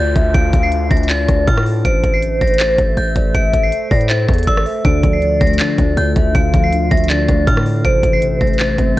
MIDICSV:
0, 0, Header, 1, 8, 480
1, 0, Start_track
1, 0, Key_signature, -1, "minor"
1, 0, Tempo, 375000
1, 444, Time_signature, 4, 2, 24, 8
1, 11516, End_track
2, 0, Start_track
2, 0, Title_t, "Synth bell"
2, 0, Program_c, 0, 98
2, 0, Note_on_c, 0, 91, 93
2, 416, Note_off_c, 0, 91, 0
2, 443, Note_on_c, 0, 98, 105
2, 789, Note_off_c, 0, 98, 0
2, 812, Note_on_c, 0, 96, 86
2, 1143, Note_off_c, 0, 96, 0
2, 1166, Note_on_c, 0, 94, 89
2, 1361, Note_off_c, 0, 94, 0
2, 1406, Note_on_c, 0, 93, 94
2, 1856, Note_off_c, 0, 93, 0
2, 1885, Note_on_c, 0, 89, 89
2, 2080, Note_off_c, 0, 89, 0
2, 2364, Note_on_c, 0, 98, 108
2, 2709, Note_off_c, 0, 98, 0
2, 2733, Note_on_c, 0, 96, 81
2, 3064, Note_off_c, 0, 96, 0
2, 3087, Note_on_c, 0, 94, 78
2, 3281, Note_off_c, 0, 94, 0
2, 3326, Note_on_c, 0, 93, 82
2, 3776, Note_off_c, 0, 93, 0
2, 3807, Note_on_c, 0, 91, 85
2, 4257, Note_off_c, 0, 91, 0
2, 4285, Note_on_c, 0, 98, 107
2, 4630, Note_off_c, 0, 98, 0
2, 4650, Note_on_c, 0, 96, 84
2, 4982, Note_off_c, 0, 96, 0
2, 5005, Note_on_c, 0, 94, 77
2, 5200, Note_off_c, 0, 94, 0
2, 5244, Note_on_c, 0, 93, 94
2, 5695, Note_off_c, 0, 93, 0
2, 5724, Note_on_c, 0, 88, 96
2, 5919, Note_off_c, 0, 88, 0
2, 6206, Note_on_c, 0, 98, 106
2, 6550, Note_off_c, 0, 98, 0
2, 6571, Note_on_c, 0, 96, 82
2, 6903, Note_off_c, 0, 96, 0
2, 6925, Note_on_c, 0, 94, 87
2, 7121, Note_off_c, 0, 94, 0
2, 7166, Note_on_c, 0, 93, 81
2, 7616, Note_off_c, 0, 93, 0
2, 7645, Note_on_c, 0, 91, 92
2, 8096, Note_off_c, 0, 91, 0
2, 8123, Note_on_c, 0, 98, 107
2, 8468, Note_off_c, 0, 98, 0
2, 8492, Note_on_c, 0, 96, 87
2, 8823, Note_off_c, 0, 96, 0
2, 8844, Note_on_c, 0, 94, 92
2, 9039, Note_off_c, 0, 94, 0
2, 9084, Note_on_c, 0, 93, 93
2, 9535, Note_off_c, 0, 93, 0
2, 9565, Note_on_c, 0, 89, 93
2, 9760, Note_off_c, 0, 89, 0
2, 10045, Note_on_c, 0, 98, 111
2, 10390, Note_off_c, 0, 98, 0
2, 10412, Note_on_c, 0, 96, 84
2, 10743, Note_off_c, 0, 96, 0
2, 10765, Note_on_c, 0, 94, 78
2, 10960, Note_off_c, 0, 94, 0
2, 11005, Note_on_c, 0, 93, 82
2, 11455, Note_off_c, 0, 93, 0
2, 11516, End_track
3, 0, Start_track
3, 0, Title_t, "Soft synth lead"
3, 0, Program_c, 1, 80
3, 0, Note_on_c, 1, 74, 115
3, 153, Note_off_c, 1, 74, 0
3, 202, Note_on_c, 1, 76, 91
3, 431, Note_off_c, 1, 76, 0
3, 445, Note_on_c, 1, 77, 115
3, 1121, Note_off_c, 1, 77, 0
3, 1164, Note_on_c, 1, 76, 83
3, 1392, Note_off_c, 1, 76, 0
3, 1402, Note_on_c, 1, 74, 94
3, 1854, Note_off_c, 1, 74, 0
3, 2360, Note_on_c, 1, 72, 122
3, 3991, Note_off_c, 1, 72, 0
3, 4043, Note_on_c, 1, 74, 83
3, 4271, Note_off_c, 1, 74, 0
3, 4286, Note_on_c, 1, 76, 101
3, 4962, Note_off_c, 1, 76, 0
3, 5005, Note_on_c, 1, 74, 88
3, 5232, Note_off_c, 1, 74, 0
3, 5246, Note_on_c, 1, 72, 88
3, 5696, Note_off_c, 1, 72, 0
3, 5722, Note_on_c, 1, 74, 96
3, 5951, Note_off_c, 1, 74, 0
3, 5963, Note_on_c, 1, 76, 86
3, 6191, Note_off_c, 1, 76, 0
3, 6201, Note_on_c, 1, 74, 114
3, 7831, Note_off_c, 1, 74, 0
3, 7883, Note_on_c, 1, 76, 91
3, 8111, Note_off_c, 1, 76, 0
3, 8124, Note_on_c, 1, 77, 113
3, 8801, Note_off_c, 1, 77, 0
3, 8845, Note_on_c, 1, 76, 83
3, 9073, Note_off_c, 1, 76, 0
3, 9081, Note_on_c, 1, 74, 90
3, 9534, Note_off_c, 1, 74, 0
3, 10039, Note_on_c, 1, 72, 125
3, 11516, Note_off_c, 1, 72, 0
3, 11516, End_track
4, 0, Start_track
4, 0, Title_t, "Ambient pad"
4, 0, Program_c, 2, 92
4, 0, Note_on_c, 2, 50, 83
4, 0, Note_on_c, 2, 62, 78
4, 0, Note_on_c, 2, 65, 78
4, 0, Note_on_c, 2, 69, 93
4, 2325, Note_off_c, 2, 50, 0
4, 2325, Note_off_c, 2, 62, 0
4, 2325, Note_off_c, 2, 65, 0
4, 2363, Note_on_c, 2, 76, 96
4, 2364, Note_on_c, 2, 57, 86
4, 2365, Note_on_c, 2, 72, 78
4, 6165, Note_off_c, 2, 76, 0
4, 6166, Note_off_c, 2, 57, 0
4, 6166, Note_off_c, 2, 72, 0
4, 6204, Note_on_c, 2, 50, 84
4, 6204, Note_on_c, 2, 62, 78
4, 6204, Note_on_c, 2, 65, 78
4, 9992, Note_off_c, 2, 69, 0
4, 10006, Note_off_c, 2, 50, 0
4, 10006, Note_off_c, 2, 62, 0
4, 10006, Note_off_c, 2, 65, 0
4, 10043, Note_on_c, 2, 72, 78
4, 10044, Note_on_c, 2, 57, 81
4, 10044, Note_on_c, 2, 69, 76
4, 10044, Note_on_c, 2, 76, 93
4, 11516, Note_off_c, 2, 57, 0
4, 11516, Note_off_c, 2, 69, 0
4, 11516, Note_off_c, 2, 72, 0
4, 11516, Note_off_c, 2, 76, 0
4, 11516, End_track
5, 0, Start_track
5, 0, Title_t, "Clean electric guitar"
5, 0, Program_c, 3, 27
5, 6202, Note_on_c, 3, 50, 101
5, 6452, Note_on_c, 3, 53, 80
5, 6666, Note_off_c, 3, 50, 0
5, 6682, Note_on_c, 3, 50, 81
5, 6924, Note_on_c, 3, 57, 83
5, 7151, Note_off_c, 3, 50, 0
5, 7166, Note_on_c, 3, 50, 97
5, 7409, Note_on_c, 3, 62, 87
5, 7633, Note_off_c, 3, 50, 0
5, 7648, Note_off_c, 3, 53, 0
5, 7648, Note_on_c, 3, 50, 86
5, 7887, Note_on_c, 3, 74, 83
5, 8109, Note_off_c, 3, 50, 0
5, 8124, Note_off_c, 3, 57, 0
5, 8124, Note_on_c, 3, 50, 98
5, 8365, Note_on_c, 3, 53, 87
5, 8589, Note_off_c, 3, 50, 0
5, 8605, Note_on_c, 3, 50, 80
5, 8606, Note_off_c, 3, 62, 0
5, 8848, Note_on_c, 3, 57, 83
5, 9071, Note_off_c, 3, 50, 0
5, 9085, Note_off_c, 3, 74, 0
5, 9086, Note_on_c, 3, 50, 94
5, 9329, Note_on_c, 3, 62, 83
5, 9544, Note_off_c, 3, 50, 0
5, 9559, Note_on_c, 3, 50, 89
5, 9564, Note_off_c, 3, 53, 0
5, 9809, Note_on_c, 3, 74, 85
5, 10040, Note_on_c, 3, 48, 111
5, 10042, Note_off_c, 3, 50, 0
5, 10046, Note_off_c, 3, 57, 0
5, 10046, Note_off_c, 3, 74, 0
5, 10047, Note_off_c, 3, 62, 0
5, 10286, Note_on_c, 3, 52, 85
5, 10510, Note_off_c, 3, 48, 0
5, 10526, Note_on_c, 3, 48, 89
5, 10767, Note_on_c, 3, 57, 82
5, 10991, Note_off_c, 3, 48, 0
5, 11006, Note_on_c, 3, 48, 88
5, 11243, Note_on_c, 3, 60, 96
5, 11477, Note_off_c, 3, 48, 0
5, 11485, Note_off_c, 3, 52, 0
5, 11516, Note_off_c, 3, 57, 0
5, 11516, Note_off_c, 3, 60, 0
5, 11516, End_track
6, 0, Start_track
6, 0, Title_t, "808-style bass"
6, 0, Program_c, 4, 38
6, 0, Note_on_c, 4, 38, 109
6, 194, Note_off_c, 4, 38, 0
6, 205, Note_on_c, 4, 38, 103
6, 435, Note_off_c, 4, 38, 0
6, 444, Note_on_c, 4, 38, 121
6, 674, Note_off_c, 4, 38, 0
6, 685, Note_on_c, 4, 38, 105
6, 1145, Note_off_c, 4, 38, 0
6, 1165, Note_on_c, 4, 38, 106
6, 1625, Note_off_c, 4, 38, 0
6, 1644, Note_on_c, 4, 38, 102
6, 1874, Note_off_c, 4, 38, 0
6, 1884, Note_on_c, 4, 45, 108
6, 2345, Note_off_c, 4, 45, 0
6, 2364, Note_on_c, 4, 33, 118
6, 2594, Note_off_c, 4, 33, 0
6, 2604, Note_on_c, 4, 33, 109
6, 3065, Note_off_c, 4, 33, 0
6, 3085, Note_on_c, 4, 33, 109
6, 3545, Note_off_c, 4, 33, 0
6, 3564, Note_on_c, 4, 33, 105
6, 3794, Note_off_c, 4, 33, 0
6, 3804, Note_on_c, 4, 33, 107
6, 4034, Note_off_c, 4, 33, 0
6, 4044, Note_on_c, 4, 33, 107
6, 4274, Note_off_c, 4, 33, 0
6, 4283, Note_on_c, 4, 33, 120
6, 4514, Note_off_c, 4, 33, 0
6, 4523, Note_on_c, 4, 33, 105
6, 4754, Note_off_c, 4, 33, 0
6, 5004, Note_on_c, 4, 45, 108
6, 5465, Note_off_c, 4, 45, 0
6, 5484, Note_on_c, 4, 40, 104
6, 5714, Note_off_c, 4, 40, 0
6, 5724, Note_on_c, 4, 33, 107
6, 5954, Note_off_c, 4, 33, 0
6, 6203, Note_on_c, 4, 38, 117
6, 6434, Note_off_c, 4, 38, 0
6, 6444, Note_on_c, 4, 38, 104
6, 6905, Note_off_c, 4, 38, 0
6, 6925, Note_on_c, 4, 38, 111
6, 7155, Note_off_c, 4, 38, 0
6, 7403, Note_on_c, 4, 38, 106
6, 7634, Note_off_c, 4, 38, 0
6, 7643, Note_on_c, 4, 38, 110
6, 7874, Note_off_c, 4, 38, 0
6, 7884, Note_on_c, 4, 38, 107
6, 8115, Note_off_c, 4, 38, 0
6, 8124, Note_on_c, 4, 38, 119
6, 8354, Note_off_c, 4, 38, 0
6, 8364, Note_on_c, 4, 38, 105
6, 8825, Note_off_c, 4, 38, 0
6, 8845, Note_on_c, 4, 38, 110
6, 9305, Note_off_c, 4, 38, 0
6, 9324, Note_on_c, 4, 38, 106
6, 9554, Note_off_c, 4, 38, 0
6, 9564, Note_on_c, 4, 45, 105
6, 10025, Note_off_c, 4, 45, 0
6, 10044, Note_on_c, 4, 33, 123
6, 10274, Note_off_c, 4, 33, 0
6, 10284, Note_on_c, 4, 33, 106
6, 10745, Note_off_c, 4, 33, 0
6, 10766, Note_on_c, 4, 33, 107
6, 11226, Note_off_c, 4, 33, 0
6, 11244, Note_on_c, 4, 33, 106
6, 11474, Note_off_c, 4, 33, 0
6, 11516, End_track
7, 0, Start_track
7, 0, Title_t, "Downlifter"
7, 0, Program_c, 5, 103
7, 0, Note_on_c, 5, 60, 87
7, 2364, Note_off_c, 5, 60, 0
7, 11516, End_track
8, 0, Start_track
8, 0, Title_t, "Drums"
8, 204, Note_on_c, 9, 36, 104
8, 205, Note_on_c, 9, 42, 83
8, 332, Note_off_c, 9, 36, 0
8, 333, Note_off_c, 9, 42, 0
8, 444, Note_on_c, 9, 36, 110
8, 444, Note_on_c, 9, 42, 83
8, 572, Note_off_c, 9, 36, 0
8, 572, Note_off_c, 9, 42, 0
8, 684, Note_on_c, 9, 36, 106
8, 685, Note_on_c, 9, 42, 78
8, 812, Note_off_c, 9, 36, 0
8, 813, Note_off_c, 9, 42, 0
8, 925, Note_on_c, 9, 42, 88
8, 1053, Note_off_c, 9, 42, 0
8, 1164, Note_on_c, 9, 42, 73
8, 1165, Note_on_c, 9, 36, 109
8, 1244, Note_off_c, 9, 42, 0
8, 1244, Note_on_c, 9, 42, 56
8, 1293, Note_off_c, 9, 36, 0
8, 1325, Note_off_c, 9, 42, 0
8, 1325, Note_on_c, 9, 42, 42
8, 1403, Note_on_c, 9, 39, 127
8, 1405, Note_off_c, 9, 42, 0
8, 1405, Note_on_c, 9, 42, 87
8, 1531, Note_off_c, 9, 39, 0
8, 1533, Note_off_c, 9, 42, 0
8, 1644, Note_on_c, 9, 36, 105
8, 1644, Note_on_c, 9, 37, 70
8, 1644, Note_on_c, 9, 42, 82
8, 1772, Note_off_c, 9, 36, 0
8, 1772, Note_off_c, 9, 37, 0
8, 1772, Note_off_c, 9, 42, 0
8, 1884, Note_on_c, 9, 36, 107
8, 1886, Note_on_c, 9, 42, 88
8, 2012, Note_off_c, 9, 36, 0
8, 2012, Note_on_c, 9, 37, 99
8, 2014, Note_off_c, 9, 42, 0
8, 2125, Note_on_c, 9, 46, 60
8, 2140, Note_off_c, 9, 37, 0
8, 2253, Note_off_c, 9, 46, 0
8, 2364, Note_on_c, 9, 36, 110
8, 2364, Note_on_c, 9, 42, 80
8, 2492, Note_off_c, 9, 36, 0
8, 2492, Note_off_c, 9, 42, 0
8, 2604, Note_on_c, 9, 36, 104
8, 2605, Note_on_c, 9, 42, 81
8, 2732, Note_off_c, 9, 36, 0
8, 2733, Note_off_c, 9, 42, 0
8, 2845, Note_on_c, 9, 42, 92
8, 2973, Note_off_c, 9, 42, 0
8, 3084, Note_on_c, 9, 42, 70
8, 3085, Note_on_c, 9, 36, 112
8, 3164, Note_off_c, 9, 42, 0
8, 3164, Note_on_c, 9, 42, 56
8, 3213, Note_off_c, 9, 36, 0
8, 3244, Note_off_c, 9, 42, 0
8, 3244, Note_on_c, 9, 42, 42
8, 3322, Note_on_c, 9, 39, 125
8, 3324, Note_off_c, 9, 42, 0
8, 3324, Note_on_c, 9, 42, 91
8, 3450, Note_off_c, 9, 39, 0
8, 3452, Note_off_c, 9, 42, 0
8, 3562, Note_on_c, 9, 42, 81
8, 3563, Note_on_c, 9, 36, 105
8, 3690, Note_off_c, 9, 42, 0
8, 3691, Note_off_c, 9, 36, 0
8, 3805, Note_on_c, 9, 42, 86
8, 3933, Note_off_c, 9, 42, 0
8, 4043, Note_on_c, 9, 42, 82
8, 4044, Note_on_c, 9, 36, 104
8, 4171, Note_off_c, 9, 42, 0
8, 4172, Note_off_c, 9, 36, 0
8, 4283, Note_on_c, 9, 36, 110
8, 4283, Note_on_c, 9, 42, 81
8, 4411, Note_off_c, 9, 36, 0
8, 4411, Note_off_c, 9, 42, 0
8, 4523, Note_on_c, 9, 36, 101
8, 4524, Note_on_c, 9, 42, 80
8, 4651, Note_off_c, 9, 36, 0
8, 4652, Note_off_c, 9, 42, 0
8, 4763, Note_on_c, 9, 42, 91
8, 4891, Note_off_c, 9, 42, 0
8, 5003, Note_on_c, 9, 42, 44
8, 5004, Note_on_c, 9, 36, 106
8, 5004, Note_on_c, 9, 46, 57
8, 5130, Note_off_c, 9, 42, 0
8, 5130, Note_on_c, 9, 42, 71
8, 5132, Note_off_c, 9, 36, 0
8, 5132, Note_off_c, 9, 46, 0
8, 5242, Note_on_c, 9, 39, 127
8, 5244, Note_off_c, 9, 42, 0
8, 5244, Note_on_c, 9, 42, 88
8, 5370, Note_off_c, 9, 39, 0
8, 5372, Note_off_c, 9, 42, 0
8, 5483, Note_on_c, 9, 36, 104
8, 5483, Note_on_c, 9, 37, 70
8, 5484, Note_on_c, 9, 42, 51
8, 5548, Note_off_c, 9, 42, 0
8, 5548, Note_on_c, 9, 42, 63
8, 5610, Note_off_c, 9, 42, 0
8, 5610, Note_on_c, 9, 42, 76
8, 5611, Note_off_c, 9, 36, 0
8, 5611, Note_off_c, 9, 37, 0
8, 5667, Note_off_c, 9, 42, 0
8, 5667, Note_on_c, 9, 42, 86
8, 5723, Note_on_c, 9, 36, 109
8, 5725, Note_off_c, 9, 42, 0
8, 5725, Note_on_c, 9, 42, 89
8, 5850, Note_on_c, 9, 37, 103
8, 5851, Note_off_c, 9, 36, 0
8, 5853, Note_off_c, 9, 42, 0
8, 5964, Note_on_c, 9, 46, 59
8, 5978, Note_off_c, 9, 37, 0
8, 6092, Note_off_c, 9, 46, 0
8, 6203, Note_on_c, 9, 36, 111
8, 6203, Note_on_c, 9, 42, 78
8, 6331, Note_off_c, 9, 36, 0
8, 6331, Note_off_c, 9, 42, 0
8, 6444, Note_on_c, 9, 36, 105
8, 6444, Note_on_c, 9, 42, 78
8, 6572, Note_off_c, 9, 36, 0
8, 6572, Note_off_c, 9, 42, 0
8, 6684, Note_on_c, 9, 42, 87
8, 6812, Note_off_c, 9, 42, 0
8, 6924, Note_on_c, 9, 42, 74
8, 6925, Note_on_c, 9, 36, 108
8, 7004, Note_off_c, 9, 42, 0
8, 7004, Note_on_c, 9, 42, 59
8, 7053, Note_off_c, 9, 36, 0
8, 7083, Note_off_c, 9, 42, 0
8, 7083, Note_on_c, 9, 42, 41
8, 7162, Note_on_c, 9, 39, 127
8, 7164, Note_off_c, 9, 42, 0
8, 7164, Note_on_c, 9, 42, 90
8, 7290, Note_off_c, 9, 39, 0
8, 7292, Note_off_c, 9, 42, 0
8, 7402, Note_on_c, 9, 42, 82
8, 7403, Note_on_c, 9, 36, 104
8, 7530, Note_off_c, 9, 42, 0
8, 7531, Note_off_c, 9, 36, 0
8, 7645, Note_on_c, 9, 42, 85
8, 7773, Note_off_c, 9, 42, 0
8, 7884, Note_on_c, 9, 36, 106
8, 7884, Note_on_c, 9, 42, 79
8, 8012, Note_off_c, 9, 36, 0
8, 8012, Note_off_c, 9, 42, 0
8, 8123, Note_on_c, 9, 42, 81
8, 8124, Note_on_c, 9, 36, 109
8, 8251, Note_off_c, 9, 42, 0
8, 8252, Note_off_c, 9, 36, 0
8, 8364, Note_on_c, 9, 36, 105
8, 8364, Note_on_c, 9, 42, 80
8, 8492, Note_off_c, 9, 36, 0
8, 8492, Note_off_c, 9, 42, 0
8, 8605, Note_on_c, 9, 42, 90
8, 8733, Note_off_c, 9, 42, 0
8, 8844, Note_on_c, 9, 42, 72
8, 8845, Note_on_c, 9, 36, 111
8, 8924, Note_off_c, 9, 42, 0
8, 8924, Note_on_c, 9, 42, 56
8, 8973, Note_off_c, 9, 36, 0
8, 9004, Note_off_c, 9, 42, 0
8, 9004, Note_on_c, 9, 42, 42
8, 9083, Note_on_c, 9, 39, 124
8, 9085, Note_off_c, 9, 42, 0
8, 9085, Note_on_c, 9, 42, 87
8, 9211, Note_off_c, 9, 39, 0
8, 9213, Note_off_c, 9, 42, 0
8, 9323, Note_on_c, 9, 37, 69
8, 9323, Note_on_c, 9, 42, 79
8, 9324, Note_on_c, 9, 36, 99
8, 9451, Note_off_c, 9, 37, 0
8, 9451, Note_off_c, 9, 42, 0
8, 9452, Note_off_c, 9, 36, 0
8, 9564, Note_on_c, 9, 36, 108
8, 9566, Note_on_c, 9, 42, 88
8, 9691, Note_on_c, 9, 37, 106
8, 9692, Note_off_c, 9, 36, 0
8, 9694, Note_off_c, 9, 42, 0
8, 9805, Note_on_c, 9, 46, 60
8, 9819, Note_off_c, 9, 37, 0
8, 9933, Note_off_c, 9, 46, 0
8, 10044, Note_on_c, 9, 36, 109
8, 10044, Note_on_c, 9, 42, 78
8, 10172, Note_off_c, 9, 36, 0
8, 10172, Note_off_c, 9, 42, 0
8, 10284, Note_on_c, 9, 36, 107
8, 10285, Note_on_c, 9, 42, 80
8, 10412, Note_off_c, 9, 36, 0
8, 10413, Note_off_c, 9, 42, 0
8, 10525, Note_on_c, 9, 42, 91
8, 10653, Note_off_c, 9, 42, 0
8, 10764, Note_on_c, 9, 42, 74
8, 10765, Note_on_c, 9, 36, 110
8, 10844, Note_off_c, 9, 42, 0
8, 10844, Note_on_c, 9, 42, 57
8, 10893, Note_off_c, 9, 36, 0
8, 10924, Note_off_c, 9, 42, 0
8, 10924, Note_on_c, 9, 42, 42
8, 11002, Note_on_c, 9, 39, 127
8, 11004, Note_off_c, 9, 42, 0
8, 11004, Note_on_c, 9, 42, 89
8, 11130, Note_off_c, 9, 39, 0
8, 11132, Note_off_c, 9, 42, 0
8, 11242, Note_on_c, 9, 42, 81
8, 11244, Note_on_c, 9, 36, 103
8, 11370, Note_off_c, 9, 42, 0
8, 11372, Note_off_c, 9, 36, 0
8, 11516, End_track
0, 0, End_of_file